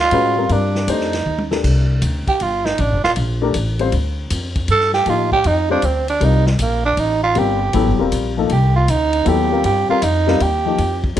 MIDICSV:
0, 0, Header, 1, 6, 480
1, 0, Start_track
1, 0, Tempo, 380952
1, 631, Time_signature, 3, 2, 24, 8
1, 14108, End_track
2, 0, Start_track
2, 0, Title_t, "Tenor saxophone"
2, 0, Program_c, 0, 66
2, 0, Note_on_c, 0, 65, 101
2, 657, Note_on_c, 0, 62, 79
2, 676, Note_off_c, 0, 65, 0
2, 1142, Note_on_c, 0, 63, 70
2, 1161, Note_off_c, 0, 62, 0
2, 1925, Note_off_c, 0, 63, 0
2, 2874, Note_on_c, 0, 67, 88
2, 3051, Note_on_c, 0, 65, 80
2, 3070, Note_off_c, 0, 67, 0
2, 3346, Note_on_c, 0, 63, 87
2, 3365, Note_off_c, 0, 65, 0
2, 3534, Note_on_c, 0, 62, 75
2, 3552, Note_off_c, 0, 63, 0
2, 3820, Note_off_c, 0, 62, 0
2, 3828, Note_on_c, 0, 65, 90
2, 3924, Note_off_c, 0, 65, 0
2, 5933, Note_on_c, 0, 69, 93
2, 6215, Note_off_c, 0, 69, 0
2, 6222, Note_on_c, 0, 67, 92
2, 6416, Note_on_c, 0, 65, 80
2, 6435, Note_off_c, 0, 67, 0
2, 6699, Note_off_c, 0, 65, 0
2, 6707, Note_on_c, 0, 67, 112
2, 6889, Note_on_c, 0, 63, 92
2, 6908, Note_off_c, 0, 67, 0
2, 7188, Note_off_c, 0, 63, 0
2, 7196, Note_on_c, 0, 62, 85
2, 7374, Note_on_c, 0, 60, 77
2, 7393, Note_off_c, 0, 62, 0
2, 7671, Note_off_c, 0, 60, 0
2, 7678, Note_on_c, 0, 62, 88
2, 7864, Note_on_c, 0, 63, 84
2, 7883, Note_off_c, 0, 62, 0
2, 8145, Note_off_c, 0, 63, 0
2, 8152, Note_on_c, 0, 55, 50
2, 8336, Note_on_c, 0, 58, 76
2, 8354, Note_off_c, 0, 55, 0
2, 8629, Note_off_c, 0, 58, 0
2, 8636, Note_on_c, 0, 62, 88
2, 8811, Note_on_c, 0, 63, 85
2, 8830, Note_off_c, 0, 62, 0
2, 9103, Note_off_c, 0, 63, 0
2, 9110, Note_on_c, 0, 65, 96
2, 9301, Note_on_c, 0, 67, 82
2, 9320, Note_off_c, 0, 65, 0
2, 10245, Note_off_c, 0, 67, 0
2, 10739, Note_on_c, 0, 67, 76
2, 11021, Note_off_c, 0, 67, 0
2, 11033, Note_on_c, 0, 65, 87
2, 11217, Note_on_c, 0, 63, 84
2, 11236, Note_off_c, 0, 65, 0
2, 11693, Note_on_c, 0, 67, 82
2, 11712, Note_off_c, 0, 63, 0
2, 12155, Note_off_c, 0, 67, 0
2, 12163, Note_on_c, 0, 67, 82
2, 12453, Note_off_c, 0, 67, 0
2, 12470, Note_on_c, 0, 65, 93
2, 12645, Note_on_c, 0, 63, 81
2, 12664, Note_off_c, 0, 65, 0
2, 13128, Note_on_c, 0, 67, 91
2, 13146, Note_off_c, 0, 63, 0
2, 13918, Note_off_c, 0, 67, 0
2, 14108, End_track
3, 0, Start_track
3, 0, Title_t, "Grand piano"
3, 0, Program_c, 1, 0
3, 148, Note_on_c, 1, 56, 63
3, 158, Note_on_c, 1, 61, 60
3, 160, Note_on_c, 1, 66, 57
3, 170, Note_on_c, 1, 71, 73
3, 437, Note_off_c, 1, 56, 0
3, 442, Note_off_c, 1, 61, 0
3, 443, Note_off_c, 1, 66, 0
3, 448, Note_off_c, 1, 71, 0
3, 461, Note_on_c, 1, 55, 59
3, 469, Note_on_c, 1, 60, 55
3, 477, Note_on_c, 1, 65, 56
3, 483, Note_on_c, 1, 70, 64
3, 616, Note_off_c, 1, 55, 0
3, 625, Note_off_c, 1, 60, 0
3, 630, Note_off_c, 1, 65, 0
3, 635, Note_on_c, 1, 55, 56
3, 638, Note_off_c, 1, 70, 0
3, 644, Note_on_c, 1, 60, 45
3, 649, Note_on_c, 1, 65, 47
3, 656, Note_on_c, 1, 70, 62
3, 1097, Note_off_c, 1, 55, 0
3, 1101, Note_off_c, 1, 60, 0
3, 1104, Note_off_c, 1, 65, 0
3, 1104, Note_on_c, 1, 57, 65
3, 1107, Note_off_c, 1, 70, 0
3, 1115, Note_on_c, 1, 62, 53
3, 1126, Note_on_c, 1, 67, 54
3, 1128, Note_on_c, 1, 72, 69
3, 1394, Note_off_c, 1, 57, 0
3, 1400, Note_off_c, 1, 62, 0
3, 1405, Note_off_c, 1, 67, 0
3, 1406, Note_off_c, 1, 72, 0
3, 1899, Note_on_c, 1, 69, 54
3, 1908, Note_on_c, 1, 62, 49
3, 1915, Note_on_c, 1, 67, 50
3, 1920, Note_on_c, 1, 70, 65
3, 2512, Note_off_c, 1, 69, 0
3, 2517, Note_off_c, 1, 62, 0
3, 2520, Note_off_c, 1, 67, 0
3, 2523, Note_off_c, 1, 70, 0
3, 4300, Note_on_c, 1, 57, 72
3, 4307, Note_on_c, 1, 62, 67
3, 4314, Note_on_c, 1, 67, 64
3, 4322, Note_on_c, 1, 70, 76
3, 4449, Note_off_c, 1, 57, 0
3, 4452, Note_off_c, 1, 62, 0
3, 4455, Note_off_c, 1, 67, 0
3, 4460, Note_off_c, 1, 70, 0
3, 4779, Note_on_c, 1, 55, 60
3, 4786, Note_on_c, 1, 60, 55
3, 4796, Note_on_c, 1, 65, 56
3, 4798, Note_on_c, 1, 72, 74
3, 4928, Note_off_c, 1, 55, 0
3, 4932, Note_off_c, 1, 60, 0
3, 4936, Note_off_c, 1, 65, 0
3, 4937, Note_off_c, 1, 72, 0
3, 6383, Note_on_c, 1, 53, 52
3, 6389, Note_on_c, 1, 58, 48
3, 6396, Note_on_c, 1, 63, 48
3, 6404, Note_on_c, 1, 67, 62
3, 6673, Note_off_c, 1, 53, 0
3, 6675, Note_off_c, 1, 58, 0
3, 6679, Note_off_c, 1, 63, 0
3, 6683, Note_off_c, 1, 67, 0
3, 7176, Note_on_c, 1, 55, 62
3, 7185, Note_on_c, 1, 60, 58
3, 7188, Note_on_c, 1, 65, 58
3, 7198, Note_on_c, 1, 72, 76
3, 7326, Note_off_c, 1, 55, 0
3, 7330, Note_off_c, 1, 60, 0
3, 7332, Note_off_c, 1, 65, 0
3, 7337, Note_off_c, 1, 72, 0
3, 7815, Note_on_c, 1, 55, 56
3, 7825, Note_on_c, 1, 60, 48
3, 7832, Note_on_c, 1, 65, 45
3, 7837, Note_on_c, 1, 70, 59
3, 8108, Note_off_c, 1, 55, 0
3, 8113, Note_off_c, 1, 60, 0
3, 8117, Note_off_c, 1, 65, 0
3, 8120, Note_off_c, 1, 70, 0
3, 9263, Note_on_c, 1, 55, 67
3, 9268, Note_on_c, 1, 60, 58
3, 9276, Note_on_c, 1, 65, 58
3, 9285, Note_on_c, 1, 70, 68
3, 9553, Note_off_c, 1, 55, 0
3, 9555, Note_off_c, 1, 60, 0
3, 9559, Note_off_c, 1, 65, 0
3, 9563, Note_off_c, 1, 70, 0
3, 9747, Note_on_c, 1, 54, 66
3, 9757, Note_on_c, 1, 59, 60
3, 9760, Note_on_c, 1, 64, 61
3, 9769, Note_on_c, 1, 69, 70
3, 10035, Note_off_c, 1, 54, 0
3, 10040, Note_off_c, 1, 59, 0
3, 10041, Note_off_c, 1, 64, 0
3, 10045, Note_off_c, 1, 69, 0
3, 10062, Note_on_c, 1, 55, 68
3, 10068, Note_on_c, 1, 60, 64
3, 10078, Note_on_c, 1, 65, 58
3, 10087, Note_on_c, 1, 70, 72
3, 10481, Note_off_c, 1, 55, 0
3, 10484, Note_off_c, 1, 60, 0
3, 10489, Note_off_c, 1, 65, 0
3, 10494, Note_off_c, 1, 70, 0
3, 10546, Note_on_c, 1, 53, 64
3, 10556, Note_on_c, 1, 58, 67
3, 10561, Note_on_c, 1, 63, 59
3, 10570, Note_on_c, 1, 69, 77
3, 10692, Note_off_c, 1, 53, 0
3, 10696, Note_off_c, 1, 58, 0
3, 10699, Note_off_c, 1, 63, 0
3, 10704, Note_off_c, 1, 69, 0
3, 11658, Note_on_c, 1, 54, 62
3, 11671, Note_on_c, 1, 59, 63
3, 11675, Note_on_c, 1, 64, 57
3, 11682, Note_on_c, 1, 69, 74
3, 11951, Note_off_c, 1, 54, 0
3, 11957, Note_off_c, 1, 59, 0
3, 11959, Note_off_c, 1, 64, 0
3, 11963, Note_off_c, 1, 69, 0
3, 11988, Note_on_c, 1, 55, 59
3, 11998, Note_on_c, 1, 60, 59
3, 11998, Note_on_c, 1, 65, 56
3, 12007, Note_on_c, 1, 70, 69
3, 12404, Note_off_c, 1, 55, 0
3, 12409, Note_off_c, 1, 60, 0
3, 12410, Note_off_c, 1, 65, 0
3, 12414, Note_off_c, 1, 70, 0
3, 12458, Note_on_c, 1, 55, 65
3, 12466, Note_on_c, 1, 60, 62
3, 12477, Note_on_c, 1, 65, 65
3, 12487, Note_on_c, 1, 70, 77
3, 12608, Note_off_c, 1, 55, 0
3, 12612, Note_off_c, 1, 60, 0
3, 12618, Note_off_c, 1, 65, 0
3, 12623, Note_off_c, 1, 70, 0
3, 12939, Note_on_c, 1, 55, 76
3, 12948, Note_on_c, 1, 60, 67
3, 12958, Note_on_c, 1, 65, 73
3, 12959, Note_on_c, 1, 70, 83
3, 13089, Note_off_c, 1, 55, 0
3, 13093, Note_off_c, 1, 60, 0
3, 13098, Note_off_c, 1, 65, 0
3, 13099, Note_off_c, 1, 70, 0
3, 13426, Note_on_c, 1, 53, 59
3, 13435, Note_on_c, 1, 58, 51
3, 13437, Note_on_c, 1, 63, 54
3, 13448, Note_on_c, 1, 67, 65
3, 13572, Note_off_c, 1, 53, 0
3, 13577, Note_off_c, 1, 58, 0
3, 13578, Note_off_c, 1, 63, 0
3, 13584, Note_off_c, 1, 67, 0
3, 14063, Note_on_c, 1, 56, 64
3, 14067, Note_on_c, 1, 61, 57
3, 14108, Note_off_c, 1, 56, 0
3, 14108, Note_off_c, 1, 61, 0
3, 14108, End_track
4, 0, Start_track
4, 0, Title_t, "Upright bass"
4, 0, Program_c, 2, 32
4, 0, Note_on_c, 2, 38, 94
4, 131, Note_off_c, 2, 38, 0
4, 147, Note_on_c, 2, 45, 80
4, 614, Note_off_c, 2, 45, 0
4, 627, Note_on_c, 2, 43, 85
4, 1094, Note_off_c, 2, 43, 0
4, 1104, Note_on_c, 2, 41, 84
4, 1572, Note_off_c, 2, 41, 0
4, 1585, Note_on_c, 2, 39, 80
4, 2053, Note_off_c, 2, 39, 0
4, 2067, Note_on_c, 2, 36, 83
4, 2534, Note_off_c, 2, 36, 0
4, 2541, Note_on_c, 2, 38, 94
4, 2841, Note_off_c, 2, 38, 0
4, 3038, Note_on_c, 2, 31, 79
4, 3499, Note_off_c, 2, 31, 0
4, 3513, Note_on_c, 2, 33, 94
4, 3678, Note_off_c, 2, 33, 0
4, 3678, Note_on_c, 2, 29, 60
4, 3826, Note_off_c, 2, 29, 0
4, 3834, Note_on_c, 2, 26, 60
4, 3980, Note_off_c, 2, 26, 0
4, 3992, Note_on_c, 2, 34, 91
4, 4456, Note_off_c, 2, 34, 0
4, 4473, Note_on_c, 2, 33, 88
4, 4936, Note_off_c, 2, 33, 0
4, 4942, Note_on_c, 2, 38, 91
4, 5410, Note_off_c, 2, 38, 0
4, 5425, Note_on_c, 2, 41, 96
4, 5892, Note_off_c, 2, 41, 0
4, 5900, Note_on_c, 2, 43, 81
4, 6369, Note_off_c, 2, 43, 0
4, 6376, Note_on_c, 2, 45, 86
4, 6847, Note_off_c, 2, 45, 0
4, 6866, Note_on_c, 2, 41, 88
4, 7332, Note_off_c, 2, 41, 0
4, 7340, Note_on_c, 2, 38, 84
4, 7809, Note_off_c, 2, 38, 0
4, 7821, Note_on_c, 2, 36, 91
4, 8290, Note_off_c, 2, 36, 0
4, 8306, Note_on_c, 2, 34, 86
4, 8772, Note_off_c, 2, 34, 0
4, 8783, Note_on_c, 2, 33, 82
4, 9251, Note_off_c, 2, 33, 0
4, 9272, Note_on_c, 2, 31, 84
4, 9736, Note_off_c, 2, 31, 0
4, 9754, Note_on_c, 2, 33, 92
4, 9906, Note_off_c, 2, 33, 0
4, 9906, Note_on_c, 2, 31, 55
4, 10067, Note_off_c, 2, 31, 0
4, 10074, Note_on_c, 2, 27, 60
4, 10220, Note_off_c, 2, 27, 0
4, 10234, Note_on_c, 2, 34, 80
4, 10697, Note_off_c, 2, 34, 0
4, 10717, Note_on_c, 2, 36, 90
4, 11179, Note_off_c, 2, 36, 0
4, 11193, Note_on_c, 2, 38, 94
4, 11657, Note_off_c, 2, 38, 0
4, 11672, Note_on_c, 2, 39, 91
4, 12136, Note_off_c, 2, 39, 0
4, 12153, Note_on_c, 2, 43, 86
4, 12448, Note_off_c, 2, 43, 0
4, 12631, Note_on_c, 2, 41, 90
4, 13096, Note_off_c, 2, 41, 0
4, 13109, Note_on_c, 2, 39, 82
4, 13575, Note_off_c, 2, 39, 0
4, 13589, Note_on_c, 2, 41, 91
4, 14055, Note_off_c, 2, 41, 0
4, 14108, End_track
5, 0, Start_track
5, 0, Title_t, "Muted upright bass strokes"
5, 2863, Note_on_c, 9, 29, 39
5, 2989, Note_off_c, 9, 29, 0
5, 12473, Note_on_c, 9, 29, 41
5, 12599, Note_off_c, 9, 29, 0
5, 14108, End_track
6, 0, Start_track
6, 0, Title_t, "Drums"
6, 140, Note_on_c, 9, 51, 55
6, 266, Note_off_c, 9, 51, 0
6, 622, Note_on_c, 9, 51, 52
6, 748, Note_off_c, 9, 51, 0
6, 947, Note_on_c, 9, 38, 45
6, 1073, Note_off_c, 9, 38, 0
6, 1107, Note_on_c, 9, 44, 58
6, 1107, Note_on_c, 9, 51, 68
6, 1233, Note_off_c, 9, 44, 0
6, 1233, Note_off_c, 9, 51, 0
6, 1270, Note_on_c, 9, 38, 27
6, 1396, Note_off_c, 9, 38, 0
6, 1425, Note_on_c, 9, 51, 45
6, 1431, Note_on_c, 9, 38, 45
6, 1551, Note_off_c, 9, 51, 0
6, 1557, Note_off_c, 9, 38, 0
6, 1590, Note_on_c, 9, 47, 41
6, 1716, Note_off_c, 9, 47, 0
6, 1744, Note_on_c, 9, 48, 60
6, 1870, Note_off_c, 9, 48, 0
6, 1908, Note_on_c, 9, 38, 77
6, 2034, Note_off_c, 9, 38, 0
6, 2068, Note_on_c, 9, 36, 64
6, 2068, Note_on_c, 9, 49, 68
6, 2194, Note_off_c, 9, 36, 0
6, 2194, Note_off_c, 9, 49, 0
6, 2541, Note_on_c, 9, 44, 52
6, 2541, Note_on_c, 9, 51, 63
6, 2667, Note_off_c, 9, 44, 0
6, 2667, Note_off_c, 9, 51, 0
6, 2866, Note_on_c, 9, 36, 66
6, 2866, Note_on_c, 9, 51, 42
6, 2992, Note_off_c, 9, 36, 0
6, 2992, Note_off_c, 9, 51, 0
6, 3022, Note_on_c, 9, 51, 53
6, 3148, Note_off_c, 9, 51, 0
6, 3345, Note_on_c, 9, 38, 59
6, 3471, Note_off_c, 9, 38, 0
6, 3502, Note_on_c, 9, 51, 54
6, 3628, Note_off_c, 9, 51, 0
6, 3828, Note_on_c, 9, 38, 52
6, 3954, Note_off_c, 9, 38, 0
6, 3979, Note_on_c, 9, 51, 63
6, 4105, Note_off_c, 9, 51, 0
6, 4459, Note_on_c, 9, 44, 57
6, 4459, Note_on_c, 9, 51, 67
6, 4585, Note_off_c, 9, 44, 0
6, 4585, Note_off_c, 9, 51, 0
6, 4778, Note_on_c, 9, 51, 44
6, 4904, Note_off_c, 9, 51, 0
6, 4940, Note_on_c, 9, 51, 58
6, 5066, Note_off_c, 9, 51, 0
6, 5421, Note_on_c, 9, 44, 59
6, 5421, Note_on_c, 9, 51, 73
6, 5547, Note_off_c, 9, 44, 0
6, 5547, Note_off_c, 9, 51, 0
6, 5739, Note_on_c, 9, 51, 44
6, 5742, Note_on_c, 9, 36, 59
6, 5865, Note_off_c, 9, 51, 0
6, 5868, Note_off_c, 9, 36, 0
6, 5896, Note_on_c, 9, 51, 58
6, 6022, Note_off_c, 9, 51, 0
6, 6056, Note_on_c, 9, 38, 28
6, 6182, Note_off_c, 9, 38, 0
6, 6214, Note_on_c, 9, 38, 46
6, 6340, Note_off_c, 9, 38, 0
6, 6373, Note_on_c, 9, 51, 52
6, 6499, Note_off_c, 9, 51, 0
6, 6701, Note_on_c, 9, 36, 50
6, 6827, Note_off_c, 9, 36, 0
6, 6856, Note_on_c, 9, 51, 57
6, 6982, Note_off_c, 9, 51, 0
6, 7334, Note_on_c, 9, 44, 47
6, 7334, Note_on_c, 9, 51, 60
6, 7460, Note_off_c, 9, 44, 0
6, 7460, Note_off_c, 9, 51, 0
6, 7662, Note_on_c, 9, 51, 45
6, 7788, Note_off_c, 9, 51, 0
6, 7824, Note_on_c, 9, 51, 56
6, 7950, Note_off_c, 9, 51, 0
6, 8148, Note_on_c, 9, 38, 57
6, 8274, Note_off_c, 9, 38, 0
6, 8301, Note_on_c, 9, 44, 55
6, 8301, Note_on_c, 9, 51, 69
6, 8427, Note_off_c, 9, 44, 0
6, 8427, Note_off_c, 9, 51, 0
6, 8784, Note_on_c, 9, 51, 58
6, 8910, Note_off_c, 9, 51, 0
6, 9263, Note_on_c, 9, 51, 47
6, 9389, Note_off_c, 9, 51, 0
6, 9743, Note_on_c, 9, 51, 60
6, 9869, Note_off_c, 9, 51, 0
6, 10229, Note_on_c, 9, 44, 58
6, 10229, Note_on_c, 9, 51, 67
6, 10355, Note_off_c, 9, 44, 0
6, 10355, Note_off_c, 9, 51, 0
6, 10705, Note_on_c, 9, 51, 61
6, 10831, Note_off_c, 9, 51, 0
6, 11191, Note_on_c, 9, 44, 61
6, 11191, Note_on_c, 9, 51, 72
6, 11317, Note_off_c, 9, 44, 0
6, 11317, Note_off_c, 9, 51, 0
6, 11502, Note_on_c, 9, 51, 49
6, 11628, Note_off_c, 9, 51, 0
6, 11665, Note_on_c, 9, 51, 64
6, 11791, Note_off_c, 9, 51, 0
6, 12145, Note_on_c, 9, 51, 58
6, 12271, Note_off_c, 9, 51, 0
6, 12624, Note_on_c, 9, 44, 55
6, 12624, Note_on_c, 9, 51, 69
6, 12750, Note_off_c, 9, 44, 0
6, 12750, Note_off_c, 9, 51, 0
6, 12948, Note_on_c, 9, 38, 53
6, 13074, Note_off_c, 9, 38, 0
6, 13108, Note_on_c, 9, 51, 60
6, 13234, Note_off_c, 9, 51, 0
6, 13587, Note_on_c, 9, 51, 56
6, 13713, Note_off_c, 9, 51, 0
6, 13907, Note_on_c, 9, 36, 65
6, 14033, Note_off_c, 9, 36, 0
6, 14069, Note_on_c, 9, 44, 54
6, 14069, Note_on_c, 9, 51, 68
6, 14108, Note_off_c, 9, 44, 0
6, 14108, Note_off_c, 9, 51, 0
6, 14108, End_track
0, 0, End_of_file